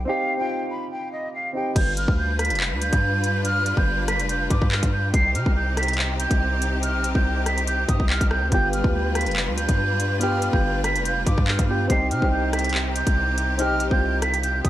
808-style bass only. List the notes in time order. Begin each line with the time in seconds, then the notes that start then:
1.76 G1
2.08 D2
2.50 F1
2.72 D2
2.93 G2
3.77 G1
4.19 F1
4.50 G2
4.62 G2
4.83 G2
5.14 C2
5.35 C3
5.46 C2
6.31 C2
6.94 B1
7.15 C2
7.89 G2
8.00 C2
8.21 C2
8.42 D2
8.52 G1
8.84 D2
9.26 F1
9.48 D2
9.69 G2
10.53 G1
10.95 F1
11.26 G2
11.38 G2
11.59 G2
11.90 C2
12.11 C3
12.22 C2
13.07 C2
13.70 B1
13.91 C2
14.65 G2